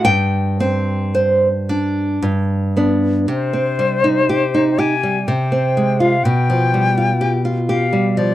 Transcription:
0.05 G2 G5
0.60 C4
1.15 C5
1.69 D4
2.22 G2
2.77 B3 D4
3.28 C3 C5
3.53 C4
3.79 G3
4.04 D#4
4.29 G4
4.54 D#4
4.78 G4 G#5
5.03 G3
5.27 C3 G5
5.52 C4
5.77 G#3
6.00 F4 F5
6.24 B2 G5
6.50 F3
6.74 G3
6.98 F4
7.21 G4
7.45 F4
7.68 G4 F5
7.93 G3
8.17 F3 D5

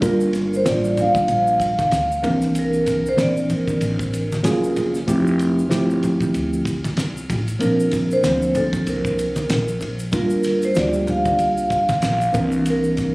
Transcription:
0.01 G1 G3 A#3 D4 F4 A#4, kick, ride, shaker
0.05 A#4
0.21 shaker
0.33 snare, ride, shaker
0.53 C5, shaker
0.65 A1 G3 A#3 D4 F4 C5 D5, snare, hi-hat pedal, ride, shaker
0.84 shaker
0.97 F5, ride, low conga, shaker
1.15 muted upright bass stroke, kick, ride, high conga, shaker
1.28 A#1, ride, high conga, shaker
1.47 shaker
1.60 kick, ride, shaker
1.79 kick, snare, ride, high conga, shaker
1.91 D2, snare, hi-hat pedal, ride, shaker
2.12 shaker
2.22 C2 E3 A#3 C4 D4 A#4, kick, ride, low conga, shaker
2.42 snare, ride, shaker
2.55 A#4, ride, shaker
2.73 shaker
2.86 kick, snare, ride, shaker
3.06 C5, shaker
3.16 A#1 E3 A#3 C4 D4 A#4, snare, hi-hat pedal, ride, shaker
3.22 D5
3.37 shaker
3.50 A#4, ride, low conga, shaker
3.68 muted upright bass stroke, kick, high conga, shaker
3.81 A1, ride, high conga, shaker
3.99 kick, shaker
4.13 ride, shaker
4.32 snare, high conga, shaker
4.43 F#1 F#3 A3 C#4 F4 G#4, snare, hi-hat pedal, ride, shaker
4.50 A#3
4.64 shaker
4.76 ride, low conga, shaker
4.95 snare, shaker
5.07 F1 F3 A3 C4 E4 G4, kick, ride, shaker
5.27 shaker
5.39 ride, shaker
5.59 shaker
5.69 G1 F3 A3 C4 E4 G4, snare, hi-hat pedal, ride, shaker
5.90 shaker
6.03 ride, low conga, shaker
6.21 muted upright bass stroke, kick, high conga, shaker
6.34 D2, ride, high conga, shaker
6.53 shaker
6.65 kick, ride, shaker
6.84 kick, snare, ride, high conga, shaker
6.97 C2, snare, hi-hat pedal, ride, shaker
7.17 shaker
7.30 A1, kick, ride, low conga, shaker
7.48 ride, shaker
7.59 A#1 F3 A#3 C4 D4 A#4, ride, shaker
7.80 shaker
7.91 kick, snare, ride, shaker
8.11 C5, shaker
8.23 D2 F3 A#3 C4 D4 C5, snare, hi-hat pedal, ride, shaker
8.42 shaker
8.55 A4, ride, low conga, shaker
8.73 muted upright bass stroke, kick, ride, high conga, shaker
8.87 C2 A#4, ride, high conga, shaker
9.05 kick, shaker
9.19 ride, shaker
9.36 ride, high conga, shaker
9.50 A#1, snare, hi-hat pedal, ride, low conga, shaker
9.68 shaker
9.81 ride, low conga, shaker
9.99 ride, shaker
10.12 G1 G3 A#3 D4 F4 A#4, kick, ride, shaker
10.30 shaker
10.43 snare, ride, shaker
10.62 C5, ride, shaker
10.75 D2 G3 A#3 D4 F4 F#4 D5, snare, hi-hat pedal, ride, shaker
10.83 G4
10.93 shaker
11.07 F5, ride, low conga, shaker
11.25 kick, ride, high conga, shaker
11.39 C2, ride, high conga, shaker
11.57 shaker
11.70 kick, ride, shaker
11.89 kick, snare, ride, high conga, shaker
12.02 A#1, snare, hi-hat pedal, ride, shaker
12.21 shaker
12.32 C2 E3 A#3 C4 D4 A#4, kick, ride, low conga, shaker
12.52 shaker
12.66 ride, shaker
12.70 A#4
12.84 shaker
12.97 kick, snare, ride, shaker

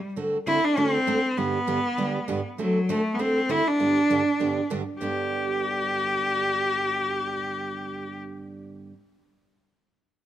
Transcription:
0.16 D3 A3 C4 F#4 A4
0.47 D3 A3 C4 E4 F#4 A4
0.65 D4
0.77 D3 A3 C4 F#4 A4
1.07 D3 A3 C4 F#4 A4
1.37 G2 D3 G3 B3 D4 G4
1.67 G2 D3 G3 B3 D4 G4
1.98 G2 D3 G3 B3 D4 G4
2.28 G2 D3 G3 B3 D4 G4
2.58 D3 F#3 A3 C4 F#4 A4
2.89 D3 A3 C4 F#4 A4
3.14 B3
3.19 D3 A3 C4 F#4 A4
3.49 D3 A3 C4 E4 F#4 A4
3.68 D4
3.79 G2 D3 G3 B3 D4 G4
4.10 G2 D3 G3 B3 D4 G4
4.40 G2 D3 G3 B3 D4 G4
4.70 G2 D3 G3 B3 D4 G4
5.01 G2 D3 G3 B3 D4 G4

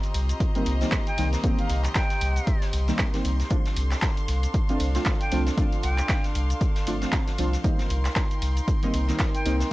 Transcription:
Already playing: C4 F4 G4 D#5 A#5 C6
0.03 closed hi-hat, cabasa
0.14 C2, closed hi-hat, open hi-hat
0.29 closed hi-hat, cabasa
0.40 kick, closed hi-hat, cabasa
0.55 D#3 G3 A#3 C4 D#4, closed hi-hat, cabasa
0.66 C2, closed hi-hat, open hi-hat
0.81 D#3 G3 A#3 C4 D#4, snare, closed hi-hat, cabasa
0.92 kick, snare, clap, closed hi-hat, cabasa
1.07 G5, closed hi-hat, cabasa
1.17 C2 D#3 G3 A#3 C4 D#4, closed hi-hat, open hi-hat
1.33 snare, closed hi-hat, cabasa
1.43 D#3 G3 A#3 C4 D#4, kick, closed hi-hat, cabasa
1.59 F5, closed hi-hat, cabasa
1.69 C2, closed hi-hat, open hi-hat
1.84 clap, closed hi-hat, cabasa
1.95 G5, kick, snare, clap, closed hi-hat, cabasa
2.10 snare, closed hi-hat, cabasa
2.21 C2, closed hi-hat, open hi-hat
2.36 closed hi-hat, cabasa
2.47 kick, closed hi-hat, cabasa
2.62 snare, open hi-hat, cabasa
2.73 C2, closed hi-hat, open hi-hat
2.88 D#3 G3 A#3 C4 D#4, snare, closed hi-hat, cabasa
2.99 kick, snare, clap, closed hi-hat, cabasa
3.14 D#3 G3 A#3 C4 D#4, snare, closed hi-hat, cabasa
3.25 C2, closed hi-hat, open hi-hat
3.40 snare, closed hi-hat, cabasa
3.50 F3 A3 C4 D4 F4, kick, closed hi-hat, cabasa
3.66 snare, closed hi-hat, cabasa
3.77 C2 A4, closed hi-hat, open hi-hat
3.91 snare, clap, closed hi-hat, cabasa
4.01 F5 C6, kick, snare, clap, closed hi-hat, cabasa
4.17 closed hi-hat, cabasa
4.28 C2, closed hi-hat, open hi-hat
4.43 closed hi-hat, cabasa
4.54 kick, closed hi-hat, cabasa
4.69 F3 A3 C4 D4 F4, closed hi-hat, cabasa
4.80 C2, closed hi-hat, open hi-hat
4.95 F3 A3 C4 D4 F4, snare, closed hi-hat, cabasa
5.05 kick, snare, clap, closed hi-hat, cabasa
5.21 G5, closed hi-hat, cabasa
5.32 C2 F3 A3 C4 D4 F4, closed hi-hat, open hi-hat
5.47 snare, closed hi-hat, cabasa
5.57 F3 A3 C4 D4 F4, kick, closed hi-hat, cabasa
5.72 closed hi-hat, cabasa
5.83 C2 G5, closed hi-hat, open hi-hat
5.98 clap, closed hi-hat, cabasa
6.09 kick, snare, clap, closed hi-hat, cabasa
6.24 snare, closed hi-hat, cabasa
6.35 C2, closed hi-hat, open hi-hat
6.50 closed hi-hat, cabasa
6.61 kick, closed hi-hat, cabasa
6.76 snare, open hi-hat, cabasa
6.87 G1 F3 A3 C4 D4 F4, closed hi-hat, open hi-hat
7.02 F3 A3 C4 D4 F4, snare, closed hi-hat, cabasa
7.12 kick, snare, clap, closed hi-hat, cabasa
7.27 snare, closed hi-hat, cabasa
7.38 C2 F3 A3 C4 D4 F4, closed hi-hat, open hi-hat
7.53 snare, closed hi-hat, cabasa
7.64 D#3 G3 A#3 C4 D#4 C6, kick, closed hi-hat, cabasa
7.75 A#4
7.79 snare, closed hi-hat, cabasa
7.90 C2, closed hi-hat, open hi-hat
8.05 snare, clap, closed hi-hat, cabasa
8.16 kick, snare, clap, closed hi-hat, cabasa
8.26 G5
8.31 closed hi-hat, cabasa
8.42 C2, closed hi-hat, open hi-hat
8.57 closed hi-hat, cabasa
8.68 kick, closed hi-hat, cabasa
8.83 D#3 G3 A#3 C4 D#4, closed hi-hat, cabasa
8.94 C2, closed hi-hat, open hi-hat
9.08 D#3 G3 A#3 C4 D#4, snare, closed hi-hat, cabasa
9.19 kick, snare, clap, closed hi-hat, cabasa
9.34 G5, closed hi-hat, cabasa
9.45 C2 D#3 G3 A#3 C4 D#4, closed hi-hat, open hi-hat
9.60 snare, closed hi-hat, cabasa

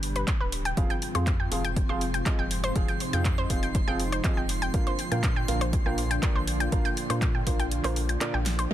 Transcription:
Already playing: G1 B2 D3 G3 D4 G4
0.03 open hi-hat
0.16 B4, closed hi-hat
0.28 kick, clap, closed hi-hat
0.41 D1 B4
0.52 open hi-hat
0.65 G5, closed hi-hat
0.77 F1 G#2 C3 F3 C4 F4 G#4 F5 C6, kick, closed hi-hat
0.90 G5, closed hi-hat
1.02 open hi-hat
1.15 F2 F3 C4 F4 G#4 C5 F5, closed hi-hat
1.27 kick, clap, closed hi-hat
1.40 G5
1.52 F1 F3 C4 F4 G#4 F5, open hi-hat
1.65 G5, closed hi-hat
1.76 kick, closed hi-hat
1.89 F1 F3 C4 F4 G#4 C5 F5
2.01 open hi-hat
2.14 G5, closed hi-hat
2.26 F3 C4 F4 G#4 D#5, kick, clap, closed hi-hat
2.39 F1 G5
2.51 open hi-hat
2.64 C5, closed hi-hat
2.76 F1 F3 C4 D#4 F4 G#4 F5, kick, closed hi-hat
2.88 G5, closed hi-hat
3.00 open hi-hat
3.13 F2 F3 C4 F4 G#4 F5 G5, closed hi-hat
3.25 kick, clap, closed hi-hat
3.38 C5
3.50 F1 F3 C4 F4 G#4 F5, kick, open hi-hat
3.63 G5, closed hi-hat
3.75 kick, closed hi-hat
3.88 F1 F3 C4 F4 G#4 F5 G5
4.00 open hi-hat
4.12 C5, closed hi-hat
4.24 F3 C4 F4 G#4 D#5, kick, clap, closed hi-hat
4.37 F1 G5
4.49 open hi-hat
4.62 G5, closed hi-hat
4.74 A#1 A#2 D3 D4 F4 A#4 F5, kick, closed hi-hat
4.87 C5, closed hi-hat
4.99 open hi-hat
5.12 A#2 D4 F4 A#4 F5 G5, closed hi-hat
5.24 kick, clap, closed hi-hat
5.36 G5
5.48 A#1 A#2 D4 F4 A#4 F5, open hi-hat
5.61 C5, closed hi-hat
5.73 kick, closed hi-hat
5.86 A#1 A#2 D4 F4 A#4 F5 G5
5.98 open hi-hat
6.11 G5, closed hi-hat
6.23 A#2 D4 F4 A#4 D5, kick, clap, closed hi-hat
6.36 A#1 C5
6.47 open hi-hat
6.60 G5, closed hi-hat
6.72 A#1 A#2 D4 F4 A#4 F5, kick, closed hi-hat
6.85 G5, closed hi-hat
6.97 open hi-hat
7.10 A#2 D4 F4 A#4 C5 F5, closed hi-hat
7.22 kick, clap, closed hi-hat
7.35 G5
7.47 A#1 A#2 D4 F4 A#4 F5, kick, open hi-hat
7.60 G5, closed hi-hat
7.71 closed hi-hat
7.84 A#1 A#2 D4 F4 A#4 C5 F5, clap, open hi-hat
7.96 open hi-hat
8.09 G5, closed hi-hat
8.21 A#2 D4 F4 A#4 D5, clap, closed hi-hat
8.34 A#1 G5
8.46 snare, open hi-hat
8.59 C5, closed hi-hat

